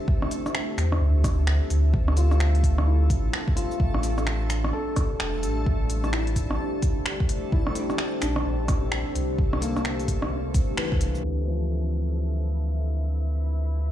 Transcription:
0.00 11.25 A3 medium
0.00 3.79 D4 medium
0.00 3.80 G4 medium
0.00 3.81 A4 medium
0.00 11.25 A4 medium
0.00 3.80 C5 medium
0.00 9.38 E5 medium
0.08 kick loud
0.22 cross-stick medium
0.31 open hi-hat medium
0.31 shaker medium
0.46 cross-stick soft
0.46 shaker soft
0.55 finger snap loud
0.77 0.99 E2 loud
0.77 finger snap medium
0.77 open hi-hat medium
0.77 shaker medium
0.92 cross-stick medium
1.01 1.60 D2 medium
1.24 kick loud
1.24 cross-stick medium
1.24 open hi-hat medium
1.24 shaker medium
1.47 finger snap loud
1.70 3.09 D2 medium
1.70 open hi-hat medium
1.70 shaker medium
1.94 kick loud
2.08 cross-stick medium
2.17 3.27 F4 medium
2.17 open hi-hat medium
2.17 shaker medium
2.31 cross-stick soft
2.31 shaker soft
2.40 finger snap loud
2.55 open hi-hat soft
2.63 kick medium
2.63 open hi-hat medium
2.63 shaker medium
2.78 cross-stick medium
2.87 3.96 E4 medium
3.10 3.32 A1 medium
3.10 kick loud
3.10 open hi-hat medium
3.10 shaker medium
3.33 finger snap loud
3.48 kick loud
3.56 4.00 F4 medium
3.56 open hi-hat medium
3.56 shaker medium
3.71 shaker soft
3.80 4.72 A1 loud
3.80 13.92 D4 medium
3.80 kick loud
3.94 13.92 G4 medium
3.94 cross-stick medium
4.03 open hi-hat medium
4.03 shaker medium
4.18 13.92 C5 medium
4.18 cross-stick medium
4.18 shaker soft
4.27 finger snap loud
4.50 finger snap medium
4.50 open hi-hat medium
4.50 shaker medium
4.64 cross-stick medium
4.73 5.83 A4 medium
4.96 kick loud
4.96 cross-stick medium
4.96 open hi-hat medium
4.96 shaker medium
5.20 5.45 E1 medium
5.20 finger snap loud
5.43 5.65 A1 medium
5.43 open hi-hat medium
5.43 shaker medium
5.66 6.58 A1 loud
5.66 kick loud
5.90 open hi-hat medium
5.90 shaker medium
6.04 cross-stick medium
6.04 shaker soft
6.13 7.22 E4 medium
6.13 finger snap loud
6.27 open hi-hat soft
6.36 kick medium
6.36 open hi-hat medium
6.36 shaker medium
6.51 cross-stick medium
6.82 kick loud
6.82 open hi-hat medium
6.82 shaker medium
7.06 finger snap loud
7.20 kick loud
7.29 open hi-hat medium
7.29 shaker medium
7.52 8.62 E4 medium
7.52 kick loud
7.67 cross-stick medium
7.75 open hi-hat medium
7.75 shaker medium
7.90 cross-stick medium
7.90 shaker soft
7.98 finger snap loud
8.22 8.44 A#1 loud
8.22 9.32 D4 medium
8.22 finger snap medium
8.22 open hi-hat medium
8.22 shaker medium
8.36 cross-stick medium
8.46 9.04 A#1 medium
8.68 kick loud
8.68 cross-stick medium
8.68 open hi-hat medium
8.68 shaker medium
8.92 finger snap loud
9.15 10.53 C2 medium
9.15 open hi-hat medium
9.15 shaker medium
9.38 kick loud
9.53 cross-stick medium
9.62 10.71 A#3 medium
9.62 open hi-hat medium
9.62 shaker medium
9.70 13.92 E5 medium
9.76 cross-stick medium
9.76 shaker soft
9.85 finger snap loud
10.00 open hi-hat soft
10.00 shaker soft
10.08 kick medium
10.08 open hi-hat medium
10.08 shaker medium
10.22 cross-stick medium
10.54 kick loud
10.54 open hi-hat medium
10.54 shaker medium
10.77 11.43 E3 medium
10.77 finger snap loud
10.92 11.00 E2 loud
10.92 kick loud
11.01 11.23 C2 medium
11.01 open hi-hat medium
11.01 shaker medium
11.15 shaker soft
11.24 13.92 D2 medium
11.24 13.92 E4 medium
11.24 13.92 E5 medium
11.48 12.57 F3 soft

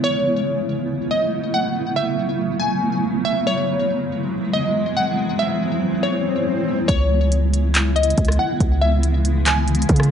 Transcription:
0.00 3.42 C#3 medium
0.00 6.85 F#3 medium
0.00 3.43 A3 medium
0.00 3.42 B3 medium
0.00 3.42 E4 medium
0.00 1.07 C#5 medium
1.11 1.51 D#5 medium
1.54 1.74 F#5 medium
1.96 2.57 E5 medium
2.60 3.20 G#5 medium
3.25 3.45 E5 medium
3.46 6.86 E3 medium
3.46 6.86 G#3 medium
3.46 6.86 B3 medium
3.46 6.86 E4 medium
3.46 4.50 C#5 loud
3.46 swell medium
4.53 4.94 D#5 medium
4.97 5.17 F#5 medium
5.39 5.99 E5 medium
6.03 6.85 C#5 medium
6.88 8.14 C#2 loud
6.88 10.11 C#3 medium
6.88 10.11 E3 medium
6.88 10.11 G#3 medium
6.88 10.11 B3 medium
6.88 10.11 E4 medium
6.88 7.92 C#5 loud
6.88 kick loud
6.88 closed hi-hat medium
7.32 closed hi-hat medium
7.54 closed hi-hat medium
7.75 clap loud
7.75 closed hi-hat medium
7.96 8.36 D#5 medium
7.96 closed hi-hat medium
8.03 closed hi-hat medium
8.10 closed hi-hat medium
8.18 8.38 C#2 loud
8.18 kick medium
8.18 closed hi-hat medium
8.25 cross-stick loud
8.25 closed hi-hat medium
8.32 closed hi-hat medium
8.39 8.59 F#5 medium
8.60 9.85 C#2 loud
8.60 kick loud
8.60 closed hi-hat medium
8.82 9.42 E5 medium
9.03 closed hi-hat medium
9.25 closed hi-hat medium
9.46 10.07 G#5 medium
9.46 clap loud
9.46 closed hi-hat medium
9.68 closed hi-hat medium
9.75 closed hi-hat medium
9.82 closed hi-hat medium
9.89 10.11 C#3 loud
9.89 kick loud
9.89 closed hi-hat medium
9.96 cross-stick loud
9.96 closed hi-hat medium
10.03 closed hi-hat medium

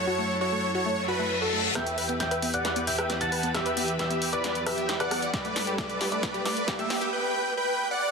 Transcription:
0.00 1.72 F#2 medium
0.00 1.71 F#3 medium
0.00 1.72 E4 medium
0.00 1.72 A4 medium
0.00 0.36 C#5 loud
0.07 0.12 F#4 loud
0.19 0.21 A3 medium
0.41 0.46 F#4 loud
0.41 0.71 C#5 medium
0.52 0.55 A3 medium
0.75 0.79 F#4 medium
0.75 1.05 C#5 medium
0.86 0.89 A3 medium
0.86 reverse cymbal medium
1.08 1.13 F#4 loud
1.08 1.38 B4 medium
1.19 1.22 A3 medium
1.42 1.46 F#4 loud
1.42 1.72 A4 medium
1.53 1.56 A3 medium
1.75 5.30 E2 medium
1.75 5.30 E3 medium
1.75 1.78 B3 medium
1.75 5.30 G4 medium
1.75 7.09 B4 medium
1.75 2.16 E5 medium
1.75 2.16 G5 loud
1.75 2.15 G6 medium
1.75 cross-stick medium
1.75 snare soft
1.75 closed hi-hat medium
1.75 riser medium
1.87 closed hi-hat medium
1.98 2.02 B4 loud
1.98 open hi-hat loud
2.09 2.12 B3 medium
2.09 closed hi-hat medium
2.20 2.50 E5 medium
2.20 2.50 G5 medium
2.20 2.50 G6 medium
2.20 snare soft
2.20 closed hi-hat medium
2.31 2.36 B4 loud
2.31 closed hi-hat medium
2.42 2.45 B3 medium
2.42 open hi-hat medium
2.54 2.84 D5 medium
2.54 2.84 F#5 loud
2.54 2.84 F#6 medium
2.54 closed hi-hat medium
2.65 2.69 B4 loud
2.65 snare soft
2.65 closed hi-hat medium
2.76 2.79 B3 medium
2.76 closed hi-hat medium
2.87 3.17 E5 medium
2.87 3.17 G5 medium
2.87 3.17 G6 medium
2.87 open hi-hat loud
2.98 3.03 B4 loud
2.98 cross-stick medium
2.98 closed hi-hat medium
3.10 3.12 B3 medium
3.10 snare medium
3.10 closed hi-hat loud
3.21 3.51 F#5 medium
3.21 3.51 A5 loud
3.21 3.51 A6 medium
3.21 closed hi-hat medium
3.32 3.37 B4 loud
3.32 open hi-hat medium
3.43 3.46 B3 medium
3.43 closed hi-hat medium
3.55 3.95 G4 medium
3.55 3.95 E5 loud
3.55 3.95 E6 medium
3.55 cross-stick medium
3.55 snare medium
3.55 closed hi-hat medium
3.66 3.70 B4 loud
3.66 closed hi-hat medium
3.77 3.80 B3 medium
3.77 open hi-hat loud
3.88 closed hi-hat medium
3.99 4.29 G4 medium
3.99 4.04 B4 loud
3.99 4.29 E5 medium
3.99 4.29 E6 medium
3.99 snare medium
3.99 closed hi-hat medium
4.10 4.13 B3 medium
4.10 closed hi-hat medium
4.22 open hi-hat medium
4.33 4.37 B4 loud
4.33 4.63 B4 medium
4.33 4.63 D5 medium
4.33 4.63 D6 medium
4.33 closed hi-hat medium
4.44 4.47 B3 medium
4.44 snare medium
4.44 closed hi-hat medium
4.55 closed hi-hat medium
4.66 4.97 G4 medium
4.66 4.71 B4 loud
4.66 4.97 E5 medium
4.66 4.96 E6 medium
4.66 cross-stick medium
4.66 open hi-hat loud
4.78 4.80 B3 medium
4.78 closed hi-hat medium
4.89 snare medium
4.89 closed hi-hat medium
5.00 5.04 B4 loud
5.00 5.30 D5 medium
5.00 5.30 F#5 loud
5.00 5.30 F#6 medium
5.00 cross-stick medium
5.00 closed hi-hat medium
5.11 5.14 B3 medium
5.11 cross-stick medium
5.11 open hi-hat loud
5.22 closed hi-hat soft
5.34 7.11 G2 medium
5.34 7.11 G3 medium
5.34 5.38 G4 loud
5.34 7.11 A4 medium
5.34 5.74 B4 medium
5.34 5.74 D5 loud
5.34 5.74 D6 loud
5.34 kick loud
5.34 snare medium
5.34 closed hi-hat medium
5.45 5.47 A3 medium
5.45 closed hi-hat medium
5.56 snare medium
5.56 open hi-hat loud
5.67 5.72 G4 loud
5.67 closed hi-hat medium
5.78 5.81 A3 medium
5.78 6.08 B4 medium
5.78 6.08 D5 medium
5.78 6.08 D6 medium
5.78 kick loud
5.78 snare medium
5.78 closed hi-hat medium
5.90 closed hi-hat soft
6.01 6.05 G4 loud
6.01 snare medium
6.01 open hi-hat loud
6.12 6.15 A3 medium
6.12 6.42 B4 medium
6.12 6.42 D5 loud
6.12 6.42 D6 loud
6.12 closed hi-hat soft
6.23 kick loud
6.23 snare medium
6.23 closed hi-hat medium
6.34 6.39 G4 loud
6.34 closed hi-hat medium
6.45 6.48 A3 medium
6.45 6.76 B4 medium
6.45 6.76 D5 medium
6.45 6.76 D6 medium
6.45 snare medium
6.45 open hi-hat loud
6.57 closed hi-hat medium
6.68 6.72 G4 loud
6.68 kick loud
6.68 snare medium
6.68 closed hi-hat medium
6.79 6.82 A3 medium
6.79 7.09 G4 medium
6.79 7.09 E5 medium
6.79 7.09 E6 loud
6.79 closed hi-hat medium
6.90 snare medium
6.90 open hi-hat medium
7.01 7.06 G4 loud
7.01 closed hi-hat medium
7.13 7.53 B4 medium
7.13 7.53 G5 loud
7.57 7.88 B4 medium
7.57 7.88 G5 medium
7.91 8.11 D5 medium
7.91 8.11 F#5 loud

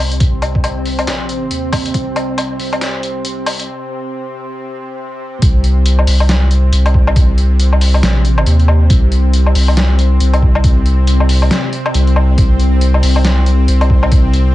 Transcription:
0.00 1.06 C2 loud
0.00 5.41 C3 medium
0.00 5.41 C4 medium
0.12 closed hi-hat medium
0.20 kick loud
0.20 closed hi-hat medium
0.42 closed hi-hat medium
0.42 low woodblock medium
0.55 kick medium
0.64 closed hi-hat medium
0.64 low woodblock medium
0.86 open hi-hat medium
0.99 closed hi-hat soft
0.99 low woodblock medium
1.07 1.49 A#1 loud
1.07 snare loud
1.07 closed hi-hat medium
1.29 closed hi-hat medium
1.51 1.93 D#2 loud
1.51 closed hi-hat medium
1.73 kick loud
1.73 open hi-hat medium
1.73 low woodblock medium
1.86 closed hi-hat medium
1.94 2.58 C2 loud
1.94 kick loud
1.94 closed hi-hat medium
2.16 closed hi-hat medium
2.16 low woodblock medium
2.38 closed hi-hat medium
2.38 low woodblock medium
2.59 3.23 C2 loud
2.59 open hi-hat medium
2.73 closed hi-hat soft
2.73 low woodblock medium
2.81 snare loud
2.81 closed hi-hat medium
3.03 closed hi-hat medium
3.25 3.68 C2 loud
3.25 closed hi-hat medium
3.46 open hi-hat medium
3.46 low woodblock medium
3.59 closed hi-hat medium
5.42 6.06 C2 loud
5.42 14.55 C3 medium
5.42 14.55 C4 medium
5.42 kick loud
5.42 closed hi-hat medium
5.64 closed hi-hat medium
5.86 closed hi-hat medium
5.99 low woodblock medium
6.07 6.71 C2 loud
6.07 open hi-hat loud
6.20 low woodblock medium
6.29 snare loud
6.29 closed hi-hat medium
6.51 closed hi-hat medium
6.73 8.02 C2 loud
6.73 closed hi-hat medium
6.86 closed hi-hat soft
6.86 low woodblock medium
6.94 kick medium
7.07 low woodblock medium
7.16 kick loud
7.16 closed hi-hat medium
7.38 closed hi-hat medium
7.60 closed hi-hat medium
7.73 low woodblock soft
7.81 open hi-hat loud
7.94 low woodblock soft
8.03 8.45 A#1 loud
8.03 snare loud
8.03 closed hi-hat medium
8.25 closed hi-hat medium
8.38 low woodblock medium
8.46 8.89 D#2 loud
8.46 closed hi-hat medium
8.60 closed hi-hat soft
8.68 low woodblock medium
8.90 9.54 C2 loud
8.90 kick loud
8.90 closed hi-hat medium
9.12 closed hi-hat medium
9.33 closed hi-hat medium
9.46 low woodblock soft
9.55 10.19 C2 loud
9.55 open hi-hat medium
9.68 low woodblock soft
9.77 snare loud
9.77 closed hi-hat medium
9.99 closed hi-hat medium
10.20 11.50 C2 loud
10.20 closed hi-hat medium
10.34 closed hi-hat soft
10.34 low woodblock medium
10.42 kick medium
10.55 low woodblock medium
10.64 kick loud
10.64 closed hi-hat medium
10.86 closed hi-hat medium
11.07 closed hi-hat medium
11.20 low woodblock medium
11.29 open hi-hat medium
11.42 low woodblock medium
11.51 snare loud
11.51 closed hi-hat medium
11.73 closed hi-hat medium
11.86 low woodblock medium
11.94 12.36 C2 loud
11.94 closed hi-hat medium
12.07 closed hi-hat soft
12.16 low woodblock medium
12.38 13.02 C2 loud
12.38 kick loud
12.38 closed hi-hat medium
12.60 closed hi-hat soft
12.81 closed hi-hat medium
12.94 low woodblock medium
13.03 13.67 C2 loud
13.03 open hi-hat medium
13.16 low woodblock medium
13.25 snare loud
13.25 closed hi-hat medium
13.46 closed hi-hat medium
13.68 14.55 C2 loud
13.68 closed hi-hat medium
13.81 closed hi-hat soft
13.81 low woodblock medium
13.90 kick medium
14.03 low woodblock medium
14.12 kick loud
14.12 closed hi-hat medium
14.33 closed hi-hat soft

